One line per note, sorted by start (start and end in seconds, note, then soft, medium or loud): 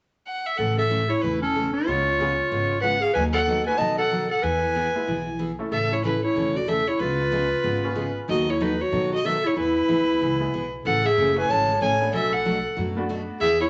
0.27 0.47 F#5 medium
0.46 0.59 E5 medium
0.58 1.10 A1 medium
0.58 0.80 C#3 medium
0.58 0.80 E3 soft
0.58 0.80 A3 medium
0.58 0.80 C#4 medium
0.58 0.78 A4 medium
0.58 0.80 A4 medium
0.58 0.77 F#5 medium
0.78 1.10 A4 medium
0.78 1.11 E5 medium
0.90 1.02 C#3 medium
0.90 1.02 E3 medium
0.90 1.02 A3 medium
0.90 1.02 C#4 medium
0.90 1.03 A4 medium
1.09 1.23 E4 medium
1.09 1.23 C#5 medium
1.22 1.74 E1 medium
1.22 1.44 C#3 soft
1.22 1.44 E3 medium
1.22 1.44 A3 medium
1.22 1.44 C#4 medium
1.22 1.41 E4 medium
1.22 1.45 A4 medium
1.22 1.41 B4 medium
1.42 1.72 C#4 medium
1.42 1.72 A4 medium
1.56 1.67 C#3 medium
1.56 1.67 E3 medium
1.56 1.67 A3 medium
1.56 1.67 C#4 medium
1.56 1.67 A4 medium
1.73 2.78 F4 medium
1.73 2.79 C#5 loud
1.86 2.38 C#2 medium
1.86 2.08 C#3 medium
1.86 2.05 G#3 medium
1.86 2.08 G#3 medium
1.86 2.05 B3 soft
1.86 2.08 B3 medium
1.86 2.05 C#4 soft
1.86 2.06 F4 medium
1.86 2.09 F4 medium
1.86 2.09 G#4 medium
2.19 2.31 C#3 medium
2.19 2.37 G#3 medium
2.19 2.31 G#3 medium
2.19 2.37 B3 medium
2.19 2.31 B3 medium
2.19 2.38 C#4 medium
2.19 2.38 F4 medium
2.19 2.31 F4 medium
2.19 2.31 G#4 medium
2.51 3.03 G#1 medium
2.51 2.72 C#3 medium
2.51 2.72 G#3 medium
2.51 2.72 B3 medium
2.51 2.72 F4 medium
2.51 2.73 G#4 medium
2.81 2.95 C#3 medium
2.81 2.95 G#3 medium
2.81 2.95 B3 medium
2.81 2.95 F4 medium
2.81 2.95 G#4 medium
2.81 3.02 B4 medium
2.81 3.03 F#5 medium
3.01 3.13 G#4 medium
3.01 3.14 F5 medium
3.13 3.67 D#2 medium
3.13 3.36 D#3 medium
3.13 3.36 F#3 medium
3.13 3.37 B3 medium
3.13 3.37 D#4 medium
3.13 3.37 A4 medium
3.13 3.23 B4 medium
3.13 3.24 G#5 loud
3.33 3.64 A4 medium
3.33 3.64 F#5 loud
3.47 3.59 D#3 medium
3.47 3.59 F#3 medium
3.47 3.59 B3 medium
3.47 3.59 D#4 medium
3.47 3.59 A4 medium
3.66 3.78 A3 medium
3.66 3.78 B3 medium
3.66 3.78 D#4 medium
3.66 3.79 F#4 medium
3.66 3.79 B4 medium
3.66 3.79 G#5 loud
3.78 4.30 B2 medium
3.78 4.00 D#3 medium
3.78 4.00 F#3 medium
3.78 4.00 B3 medium
3.78 4.00 D#4 medium
3.78 4.00 A4 medium
3.78 3.98 D#5 medium
3.78 3.97 A5 loud
3.98 4.29 A4 medium
3.98 4.29 F#5 loud
4.11 4.23 D#3 medium
4.11 4.23 F#3 medium
4.11 4.23 B3 medium
4.11 4.23 D#4 medium
4.11 4.23 A4 medium
4.30 4.44 A4 medium
4.30 4.45 F#5 medium
4.43 4.95 E2 medium
4.43 4.64 E3 medium
4.43 4.64 B3 medium
4.43 4.65 E4 medium
4.43 4.65 G#4 medium
4.43 5.39 B4 medium
4.43 5.40 G#5 medium
4.75 4.87 E3 medium
4.75 4.87 B3 medium
4.75 4.87 E4 medium
4.75 4.87 G#4 medium
4.95 5.06 G#3 medium
4.95 5.06 B3 medium
4.95 5.07 E4 medium
4.95 5.07 G#4 medium
5.07 5.59 B1 medium
5.07 5.28 E3 medium
5.07 5.28 B3 medium
5.07 5.29 E4 medium
5.07 5.29 G#4 medium
5.39 5.51 E3 medium
5.39 5.51 B3 medium
5.39 5.51 E4 medium
5.39 5.51 G#4 medium
5.58 6.01 A3 medium
5.58 6.01 C#4 medium
5.58 6.01 E4 medium
5.58 6.02 A4 medium
5.71 6.23 A1 medium
5.71 5.93 C#3 medium
5.71 5.93 E3 medium
5.71 5.93 A3 medium
5.71 5.93 C#4 medium
5.71 5.94 A4 medium
5.71 5.93 A4 medium
5.71 5.95 E5 medium
5.92 6.04 E4 medium
5.92 6.03 C#5 medium
6.04 6.15 C#3 medium
6.04 6.15 E3 medium
6.04 6.16 A3 medium
6.04 6.16 C#4 medium
6.04 6.23 E4 medium
6.04 6.16 A4 medium
6.04 6.23 B4 medium
6.24 6.57 E4 medium
6.24 6.58 C#5 medium
6.35 6.87 E1 medium
6.35 6.57 C#3 medium
6.35 6.57 E3 medium
6.35 6.57 A3 medium
6.35 6.57 C#4 medium
6.35 6.57 A4 medium
6.55 6.69 F#4 medium
6.55 6.70 D5 medium
6.68 6.79 C#3 medium
6.68 6.79 E3 medium
6.68 6.80 A3 medium
6.68 6.80 C#4 medium
6.68 6.90 A4 medium
6.68 6.79 A4 medium
6.68 6.89 E5 medium
6.87 7.03 E4 medium
6.87 7.01 C#5 medium
6.99 7.51 C#2 medium
6.99 7.20 C#3 medium
6.99 7.21 G#3 medium
6.99 7.21 B3 medium
6.99 7.21 F4 medium
6.99 8.17 F4 medium
6.99 7.21 G#4 medium
6.99 8.16 B4 loud
7.32 7.43 C#3 medium
7.32 7.43 G#3 medium
7.32 7.43 B3 medium
7.32 7.43 F4 medium
7.32 7.44 G#4 medium
7.64 8.16 G#1 medium
7.64 7.85 C#3 medium
7.64 7.85 G#3 medium
7.64 7.85 B3 medium
7.64 7.85 F4 medium
7.64 7.85 G#4 medium
7.84 8.26 B3 medium
7.84 8.26 C#4 medium
7.84 8.26 F4 medium
7.84 8.26 G#4 medium
7.95 8.07 C#3 medium
7.95 8.07 G#3 medium
7.95 8.07 B3 medium
7.95 8.07 F4 medium
7.95 8.08 G#4 medium
8.28 8.80 D#2 medium
8.28 8.49 D#3 medium
8.28 8.49 F#3 medium
8.28 8.49 B3 medium
8.28 8.49 D#4 medium
8.28 8.51 F#4 medium
8.28 8.49 A4 medium
8.28 8.51 D#5 medium
8.49 8.63 E4 medium
8.49 8.63 C#5 medium
8.60 8.72 D#3 medium
8.60 8.72 F#3 medium
8.60 8.72 B3 medium
8.60 8.72 D#4 medium
8.60 8.83 D#4 medium
8.60 8.72 A4 medium
8.60 8.83 B4 medium
8.81 9.12 F#4 medium
8.81 9.13 C#5 medium
8.92 9.44 B2 medium
8.92 9.13 D#3 medium
8.92 9.13 F#3 medium
8.92 9.13 B3 medium
8.92 9.13 D#4 medium
8.92 9.13 A4 medium
9.13 9.27 F#4 medium
9.13 9.27 D#5 medium
9.25 9.36 D#3 medium
9.25 9.36 F#3 medium
9.25 9.36 B3 medium
9.25 9.36 D#4 medium
9.25 9.47 A4 medium
9.25 9.36 A4 medium
9.25 9.48 E5 medium
9.45 9.56 E4 medium
9.45 9.58 C#5 medium
9.56 9.82 E2 medium
9.56 9.77 E3 medium
9.56 9.77 B3 medium
9.56 9.77 E4 medium
9.56 10.69 E4 medium
9.56 9.77 G#4 medium
9.56 10.70 B4 loud
9.88 10.16 D2 medium
9.88 10.00 E3 medium
9.88 10.00 B3 medium
9.88 10.00 E4 medium
9.88 10.00 G#4 medium
10.21 10.48 C#2 medium
10.21 10.42 E3 medium
10.21 10.42 B3 medium
10.21 10.42 E4 medium
10.21 10.42 G#4 medium
10.40 10.51 G#3 medium
10.40 10.51 B3 medium
10.40 10.51 E4 medium
10.40 10.52 G#4 medium
10.53 10.80 B1 medium
10.53 10.64 E3 medium
10.53 10.64 B3 medium
10.53 10.65 E4 medium
10.53 10.65 G#4 medium
10.85 11.11 A1 medium
10.85 11.06 C#3 medium
10.85 11.06 E3 medium
10.85 11.06 A3 medium
10.85 11.06 C#4 medium
10.85 11.06 G#4 medium
10.85 11.06 A4 medium
10.85 11.07 F#5 loud
11.05 11.37 G#4 medium
11.05 11.37 E5 loud
11.17 11.44 F#1 medium
11.17 11.28 C#3 medium
11.17 11.29 E3 medium
11.17 11.29 A3 medium
11.17 11.28 C#4 medium
11.17 11.29 G#4 medium
11.36 11.47 A3 medium
11.36 11.47 C#4 medium
11.36 11.48 E4 medium
11.36 11.48 G#4 medium
11.36 11.51 B4 medium
11.36 11.52 G#5 loud
11.48 11.76 G#1 medium
11.48 11.70 C#3 medium
11.48 11.70 E3 medium
11.48 11.70 A3 medium
11.48 11.70 C#4 medium
11.48 11.70 G#4 medium
11.48 11.81 C#5 medium
11.48 11.81 A5 loud
11.81 12.08 A1 medium
11.81 11.92 C#3 medium
11.81 11.92 E3 medium
11.81 11.92 A3 medium
11.81 11.93 C#4 medium
11.81 11.93 G#4 medium
11.81 12.11 C#5 medium
11.81 12.11 G#5 loud
12.00 12.42 A3 medium
12.00 12.42 B3 medium
12.00 12.43 D4 medium
12.00 12.43 G#4 medium
12.12 12.64 B1 medium
12.12 12.34 B2 medium
12.12 12.34 F#3 medium
12.12 12.34 A3 medium
12.12 12.34 D4 medium
12.12 12.34 F#4 medium
12.12 12.33 A4 medium
12.12 12.34 E5 loud
12.33 12.77 A4 medium
12.33 12.77 F#5 loud
12.45 12.56 B2 medium
12.45 12.57 F#3 medium
12.45 12.57 A3 medium
12.45 12.57 D4 medium
12.45 12.57 F#4 medium
12.77 13.29 F#2 medium
12.77 12.98 B2 medium
12.77 12.98 F#3 medium
12.77 12.98 A3 medium
12.77 12.98 D4 medium
12.77 12.98 F#4 medium
12.97 13.39 A3 medium
12.97 13.39 B3 medium
12.97 13.39 D4 medium
12.97 13.39 F#4 medium
13.09 13.21 B2 medium
13.09 13.21 F#3 medium
13.09 13.21 A3 medium
13.09 13.21 D4 medium
13.09 13.21 F#4 medium
13.40 13.70 E2 medium
13.40 13.62 E3 soft
13.40 13.63 B3 medium
13.40 13.63 E4 medium
13.40 13.60 G#4 medium
13.40 13.63 G#4 medium
13.40 13.60 E5 loud
13.61 13.67 E4 medium
13.61 13.67 C#5 medium